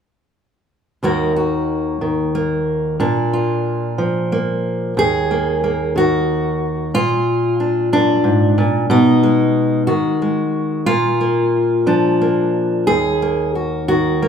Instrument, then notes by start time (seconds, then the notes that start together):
steel-string acoustic guitar
1.03 D#2 D#3 A#3 F#4
1.36 F#4
2.01 D#3
2.35 A#3
3.00 A#2 D4
3.33 F4
3.98 F3
4.32 A#3
4.97 D#2 G#4
5.31 A#3
5.64 A#3
5.96 D#3 F#4
6.94 A#2 F4
7.60 D4
7.92 F#2 D4
8.24 G#2
8.58 A#2
8.90 B2 D#4
9.23 G#3
9.87 D#3 F#4
10.22 G#3
10.86 A#2 F4
11.21 A#3
11.86 F3 D4
12.21 A#3
12.87 D#2 G#4
13.22 A#3
13.55 F#4
13.88 D#3 F#4
14.22 A#3